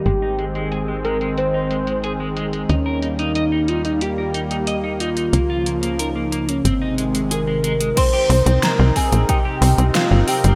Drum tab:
CC |----------------|----------------|----------------|x---------------|
HH |x-xxx-xxx-xxx-xx|x-xxx-xxx-xxx-xx|x-xxx-xxx-xxx-xx|x-oxx-oxx-oxx-ox|
SD |----------------|----------------|----------------|----o-------o---|
BD |----------------|----------------|----------------|o-----o-o-------|